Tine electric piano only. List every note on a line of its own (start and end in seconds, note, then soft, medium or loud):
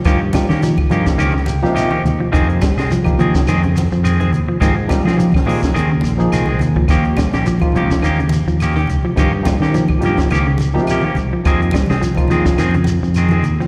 0.05 0.17 F3 medium
0.05 0.17 A#3 medium
0.05 0.18 D#4 medium
0.05 0.18 F4 medium
0.34 0.46 F3 medium
0.34 0.46 A#3 medium
0.34 0.46 D#4 medium
0.34 0.46 G4 loud
0.62 0.74 F3 medium
0.62 0.74 A#3 medium
0.62 0.75 D#4 medium
0.62 0.75 G4 medium
0.90 1.17 F3 medium
0.90 1.17 A#3 medium
0.90 1.18 D#4 medium
0.90 1.18 G4 medium
1.47 1.74 G5 medium
1.62 1.89 F3 loud
1.62 1.89 A#3 medium
1.62 1.89 D#4 medium
1.62 1.90 G4 loud
1.77 2.30 D#5 medium
2.32 2.60 F3 medium
2.32 2.60 A#3 medium
2.32 2.60 D#4 medium
2.32 2.60 G4 medium
3.04 3.46 F3 medium
3.04 3.46 A#3 medium
3.04 3.46 D#4 medium
3.04 3.46 G4 medium
4.60 4.73 F3 medium
4.60 4.73 A#3 medium
4.60 4.73 D#4 medium
4.60 4.73 G4 medium
4.87 5.00 F3 medium
4.87 5.01 A#3 medium
4.87 5.01 D#4 medium
4.87 5.01 G4 loud
5.17 5.29 F3 medium
5.17 5.30 A#3 medium
5.17 5.30 D#4 medium
5.17 5.30 G4 medium
5.45 5.73 F3 medium
5.45 5.73 A#3 medium
5.45 5.73 D#4 medium
5.45 5.74 G4 medium
6.18 6.45 F3 medium
6.18 6.45 A#3 medium
6.18 6.45 D#4 medium
6.18 6.46 G#4 loud
6.88 7.15 F3 medium
6.88 7.15 A#3 medium
6.88 7.16 D#4 medium
6.88 7.16 G4 medium
7.61 8.02 F3 medium
7.61 8.03 A#3 medium
7.61 8.03 D#4 medium
7.61 8.03 F4 medium
9.15 9.28 F3 medium
9.15 9.28 A#3 medium
9.15 9.28 D#4 medium
9.15 9.29 G4 medium
9.43 9.56 F3 medium
9.43 9.56 A#3 medium
9.43 9.56 D#4 medium
9.43 9.56 G4 medium
9.72 9.84 F3 medium
9.72 9.85 A#3 medium
9.72 9.85 D#4 medium
9.72 9.85 G4 medium
9.99 10.27 F3 medium
9.99 10.28 A#3 medium
9.99 10.28 D#4 medium
9.99 10.28 G4 medium
10.74 11.01 F3 loud
10.74 11.01 A#3 medium
10.74 11.01 D#4 medium
10.74 11.01 G4 loud
11.44 11.71 F3 medium
11.44 11.72 A#3 medium
11.44 11.72 D#4 medium
11.44 11.72 G4 medium
12.17 12.58 F3 medium
12.17 12.58 A#3 medium
12.17 12.58 D#4 medium
12.17 12.58 F4 medium